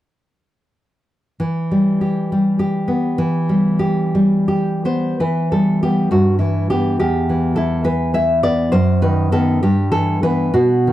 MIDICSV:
0, 0, Header, 1, 2, 480
1, 0, Start_track
1, 0, Key_signature, 1, "minor"
1, 0, Tempo, 619835
1, 1085, Time_signature, 6, 3, 24, 8
1, 1562, Tempo, 598205
1, 3002, Tempo, 685714
1, 3962, Tempo, 625000
1, 4442, Tempo, 579710
1, 6842, Tempo, 601805
1, 7802, Tempo, 641711
1, 8561, End_track
2, 0, Start_track
2, 0, Title_t, "Nylon-string guitar"
2, 0, Program_c, 0, 24
2, 1082, Note_on_c, 0, 52, 44
2, 1328, Note_on_c, 0, 55, 36
2, 1557, Note_on_c, 0, 67, 38
2, 1796, Note_off_c, 0, 55, 0
2, 1806, Note_on_c, 0, 55, 41
2, 2015, Note_off_c, 0, 67, 0
2, 2024, Note_on_c, 0, 67, 46
2, 2253, Note_on_c, 0, 59, 46
2, 2480, Note_off_c, 0, 52, 0
2, 2497, Note_on_c, 0, 52, 60
2, 2517, Note_off_c, 0, 55, 0
2, 2746, Note_on_c, 0, 55, 44
2, 2749, Note_off_c, 0, 67, 0
2, 2987, Note_on_c, 0, 67, 49
2, 2991, Note_off_c, 0, 59, 0
2, 3229, Note_off_c, 0, 55, 0
2, 3237, Note_on_c, 0, 55, 43
2, 3461, Note_off_c, 0, 67, 0
2, 3469, Note_on_c, 0, 67, 42
2, 3729, Note_on_c, 0, 59, 40
2, 3730, Note_off_c, 0, 67, 0
2, 3733, Note_on_c, 0, 72, 52
2, 3926, Note_off_c, 0, 52, 0
2, 3960, Note_off_c, 0, 72, 0
2, 3967, Note_off_c, 0, 55, 0
2, 3968, Note_off_c, 0, 59, 0
2, 3975, Note_on_c, 0, 71, 46
2, 3979, Note_on_c, 0, 52, 46
2, 4203, Note_off_c, 0, 71, 0
2, 4219, Note_on_c, 0, 69, 51
2, 4220, Note_on_c, 0, 55, 31
2, 4438, Note_off_c, 0, 69, 0
2, 4453, Note_off_c, 0, 55, 0
2, 4458, Note_on_c, 0, 67, 54
2, 4460, Note_on_c, 0, 59, 35
2, 4463, Note_on_c, 0, 55, 33
2, 4673, Note_off_c, 0, 59, 0
2, 4674, Note_off_c, 0, 52, 0
2, 4675, Note_off_c, 0, 55, 0
2, 4686, Note_off_c, 0, 67, 0
2, 4690, Note_on_c, 0, 43, 43
2, 4697, Note_on_c, 0, 66, 49
2, 4918, Note_off_c, 0, 66, 0
2, 4921, Note_on_c, 0, 64, 49
2, 4931, Note_on_c, 0, 52, 35
2, 5159, Note_off_c, 0, 64, 0
2, 5171, Note_off_c, 0, 52, 0
2, 5180, Note_on_c, 0, 52, 33
2, 5181, Note_on_c, 0, 67, 54
2, 5195, Note_on_c, 0, 59, 37
2, 5399, Note_off_c, 0, 43, 0
2, 5399, Note_off_c, 0, 52, 0
2, 5406, Note_off_c, 0, 59, 0
2, 5412, Note_off_c, 0, 67, 0
2, 5425, Note_on_c, 0, 67, 55
2, 5430, Note_on_c, 0, 40, 47
2, 5673, Note_on_c, 0, 52, 36
2, 5878, Note_off_c, 0, 67, 0
2, 5890, Note_on_c, 0, 69, 60
2, 5903, Note_on_c, 0, 64, 43
2, 6117, Note_off_c, 0, 69, 0
2, 6119, Note_off_c, 0, 52, 0
2, 6127, Note_on_c, 0, 52, 43
2, 6130, Note_on_c, 0, 71, 59
2, 6354, Note_off_c, 0, 71, 0
2, 6362, Note_off_c, 0, 64, 0
2, 6371, Note_on_c, 0, 64, 44
2, 6375, Note_on_c, 0, 76, 72
2, 6596, Note_off_c, 0, 76, 0
2, 6613, Note_on_c, 0, 59, 45
2, 6615, Note_on_c, 0, 74, 69
2, 6814, Note_off_c, 0, 40, 0
2, 6839, Note_off_c, 0, 74, 0
2, 6841, Note_off_c, 0, 52, 0
2, 6845, Note_off_c, 0, 64, 0
2, 6848, Note_off_c, 0, 59, 0
2, 6851, Note_on_c, 0, 72, 65
2, 6856, Note_on_c, 0, 42, 61
2, 7074, Note_off_c, 0, 72, 0
2, 7090, Note_on_c, 0, 51, 47
2, 7094, Note_on_c, 0, 71, 64
2, 7317, Note_off_c, 0, 71, 0
2, 7321, Note_off_c, 0, 51, 0
2, 7331, Note_on_c, 0, 51, 41
2, 7334, Note_on_c, 0, 69, 72
2, 7340, Note_on_c, 0, 59, 47
2, 7543, Note_off_c, 0, 51, 0
2, 7547, Note_off_c, 0, 42, 0
2, 7548, Note_off_c, 0, 59, 0
2, 7559, Note_off_c, 0, 69, 0
2, 7575, Note_on_c, 0, 67, 68
2, 7580, Note_on_c, 0, 43, 57
2, 7799, Note_off_c, 0, 67, 0
2, 7806, Note_on_c, 0, 52, 43
2, 7807, Note_on_c, 0, 69, 68
2, 8026, Note_off_c, 0, 69, 0
2, 8032, Note_off_c, 0, 52, 0
2, 8039, Note_on_c, 0, 52, 38
2, 8042, Note_on_c, 0, 71, 65
2, 8051, Note_on_c, 0, 59, 42
2, 8255, Note_off_c, 0, 52, 0
2, 8261, Note_off_c, 0, 59, 0
2, 8263, Note_off_c, 0, 43, 0
2, 8269, Note_off_c, 0, 71, 0
2, 8271, Note_on_c, 0, 47, 49
2, 8271, Note_on_c, 0, 66, 64
2, 8522, Note_on_c, 0, 51, 36
2, 8561, Note_off_c, 0, 47, 0
2, 8561, Note_off_c, 0, 51, 0
2, 8561, Note_off_c, 0, 66, 0
2, 8561, End_track
0, 0, End_of_file